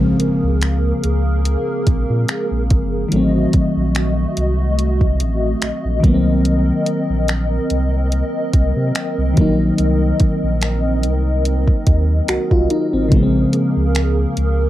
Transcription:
0.00 0.12 A#1 loud
0.00 3.06 C#3 medium
0.00 3.07 F3 medium
0.00 3.09 G#3 medium
0.00 3.08 A#3 medium
0.00 3.10 C4 medium
0.00 3.08 G#4 medium
0.00 3.08 A#4 medium
0.00 impact medium
0.20 closed hi-hat medium
0.43 0.92 C#2 medium
0.62 finger snap loud
0.62 closed hi-hat medium
1.03 1.56 C#2 medium
1.03 closed hi-hat medium
1.45 closed hi-hat medium
1.87 2.05 A#1 medium
1.87 kick medium
1.87 closed hi-hat medium
2.10 2.25 A#2 medium
2.28 finger snap medium
2.28 closed hi-hat medium
2.51 2.73 A#1 medium
2.70 3.04 F#1 medium
2.70 kick medium
2.70 closed hi-hat medium
3.09 3.46 A1 loud
3.09 5.98 D#3 medium
3.09 5.99 F#3 medium
3.09 6.01 A3 medium
3.09 6.01 F#4 medium
3.09 13.08 D#5 medium
3.09 closed hi-hat medium
3.14 6.00 A3 medium
3.14 6.02 C4 medium
3.53 kick medium
3.53 closed hi-hat medium
3.76 4.26 A#1 medium
3.95 finger snap loud
3.95 closed hi-hat medium
4.37 5.22 C2 medium
4.37 closed hi-hat medium
4.79 closed hi-hat medium
5.01 kick medium
5.20 5.54 A1 medium
5.20 closed hi-hat medium
5.62 5.71 A#1 medium
5.62 finger snap medium
5.62 closed hi-hat medium
5.85 6.00 A#1 medium
6.00 6.71 C2 loud
6.00 9.31 D#3 medium
6.00 9.32 F#3 medium
6.00 13.08 C4 medium
6.00 13.08 A#4 medium
6.00 kick loud
6.00 closed hi-hat medium
6.05 9.34 A#3 medium
6.05 6.13 B3 medium
6.14 9.38 C4 medium
6.45 closed hi-hat medium
6.86 closed hi-hat medium
7.10 7.59 A#1 medium
7.28 finger snap loud
7.28 closed hi-hat medium
7.70 8.22 C2 medium
7.70 closed hi-hat medium
8.12 closed hi-hat medium
8.53 8.72 C2 loud
8.53 kick medium
8.53 closed hi-hat medium
8.77 8.92 C3 loud
8.95 finger snap loud
8.95 closed hi-hat medium
9.18 9.33 C2 medium
9.33 12.64 D#3 medium
9.33 12.66 F#3 medium
9.33 closed hi-hat medium
9.37 9.71 A#1 medium
9.37 12.67 A#3 medium
9.37 12.27 D#4 medium
9.37 kick medium
9.78 10.13 C2 loud
9.78 closed hi-hat medium
10.20 kick medium
10.20 closed hi-hat medium
10.43 11.05 A#1 medium
10.62 finger snap loud
10.62 closed hi-hat medium
11.03 11.71 C2 medium
11.03 closed hi-hat medium
11.45 closed hi-hat medium
11.68 kick medium
11.87 12.21 D#2 medium
11.87 kick medium
11.87 closed hi-hat medium
12.28 12.38 C2 soft
12.28 12.50 F#4 medium
12.28 finger snap medium
12.28 closed hi-hat medium
12.51 12.67 C2 medium
12.51 12.70 F4 medium
12.51 kick medium
12.70 12.92 D#4 medium
12.70 closed hi-hat medium
12.93 13.14 G#1 medium
12.93 13.22 C4 medium
13.09 13.46 A#1 loud
13.09 14.70 C#3 medium
13.09 14.70 F3 medium
13.09 14.70 A#3 medium
13.09 14.70 G#4 medium
13.09 14.70 A#4 medium
13.09 kick loud
13.09 closed hi-hat medium
13.14 14.70 G#3 medium
13.14 13.21 B3 medium
13.23 14.70 C4 medium
13.53 closed hi-hat medium
13.77 14.26 C#2 medium
13.95 finger snap loud
13.95 closed hi-hat medium
14.37 14.70 C#2 medium
14.37 closed hi-hat medium

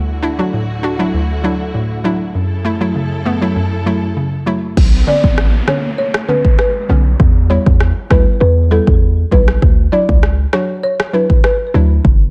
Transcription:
0.00 0.38 D2 medium
0.00 2.32 D2 medium
0.00 2.32 D3 medium
0.00 2.32 E4 medium
0.00 2.32 F#4 medium
0.23 0.29 D4 medium
0.23 0.30 E4 loud
0.39 0.50 F#3 medium
0.39 0.50 D4 medium
0.39 0.51 F#4 medium
0.53 0.99 A2 medium
0.83 0.90 D4 medium
0.83 0.90 F#4 loud
0.99 1.11 F#3 medium
0.99 1.11 D4 medium
0.99 1.11 E4 medium
1.14 1.60 D2 medium
1.44 1.57 F#3 medium
1.44 1.57 D4 medium
1.44 1.57 E4 medium
1.74 2.20 A2 medium
2.04 2.17 F#3 medium
2.04 2.17 D4 medium
2.04 2.18 E4 loud
2.35 4.75 F#2 medium
2.35 2.81 F#2 medium
2.35 4.75 C#3 medium
2.35 4.75 E4 medium
2.35 4.75 A4 medium
2.65 2.71 A3 medium
2.65 2.72 E4 loud
2.81 2.92 F#3 medium
2.81 2.92 A3 medium
2.81 2.93 E4 medium
2.95 3.41 C#3 medium
3.25 3.32 A3 medium
3.25 3.32 B3 loud
3.41 3.53 F#3 medium
3.41 3.53 A3 medium
3.41 3.53 E4 medium
3.56 4.02 F#2 medium
3.86 3.99 F#3 medium
3.86 3.99 A3 medium
3.86 3.99 E4 medium
4.17 4.62 C#3 medium
4.46 4.60 F#3 medium
4.46 4.60 A3 medium
4.46 4.60 E4 medium
4.77 5.03 B1 loud
4.77 kick loud
4.77 crash medium
4.77 downlifter medium
5.07 5.20 D3 medium
5.07 5.20 B3 medium
5.07 5.21 C#4 medium
5.07 5.21 D5 medium
5.24 5.61 A1 medium
5.24 kick medium
5.38 cross-stick medium
5.68 5.81 D3 medium
5.68 5.81 B3 medium
5.68 5.81 C#4 medium
5.68 5.93 C#5 medium
5.68 cross-stick medium
5.98 6.12 C#5 medium
6.14 cross-stick loud
6.28 6.41 D3 medium
6.28 6.42 B3 medium
6.28 6.42 C#4 medium
6.28 6.42 B4 medium
6.45 kick medium
6.59 7.03 B4 medium
6.59 cross-stick medium
6.89 7.15 B1 loud
6.89 7.02 D3 medium
6.89 7.02 B3 medium
6.89 7.03 C#4 medium
7.20 7.58 E2 loud
7.20 kick loud
7.50 7.63 G3 medium
7.50 7.63 B3 medium
7.50 7.63 E4 medium
7.50 7.63 C#5 medium
7.66 7.92 E2 medium
7.66 kick medium
7.80 cross-stick medium
8.10 8.24 D2 medium
8.10 8.23 G3 medium
8.10 8.23 B3 medium
8.10 8.24 E4 medium
8.10 8.36 B4 medium
8.10 kick medium
8.10 cross-stick medium
8.41 8.80 E2 loud
8.41 8.54 B4 medium
8.71 8.84 G3 medium
8.71 8.84 B3 medium
8.71 8.84 E4 medium
8.71 8.85 A4 medium
8.87 9.24 E2 medium
8.87 kick medium
9.31 9.57 B1 medium
9.31 9.44 G3 medium
9.31 9.45 B3 medium
9.31 9.45 E4 medium
9.31 9.45 B4 medium
9.31 kick medium
9.48 cross-stick medium
9.62 9.88 D2 loud
9.62 kick loud
9.92 10.05 F#3 medium
9.92 10.05 D4 medium
9.92 10.06 E4 medium
9.92 10.06 D5 medium
10.09 10.46 C#2 medium
10.09 kick medium
10.23 cross-stick medium
10.53 10.66 F#3 medium
10.53 10.66 D4 medium
10.53 10.66 F#4 medium
10.53 10.78 C#5 medium
10.53 cross-stick medium
10.83 10.97 C#5 medium
11.00 cross-stick loud
11.13 11.26 F#3 medium
11.13 11.27 D4 medium
11.13 11.27 E4 medium
11.13 11.27 B4 medium
11.30 kick medium
11.44 11.88 B4 medium
11.44 cross-stick medium
11.74 12.00 D2 loud
11.74 11.87 F#3 medium
11.74 11.87 D4 medium
11.74 11.87 E4 medium
12.05 12.31 F#1 loud
12.05 kick loud

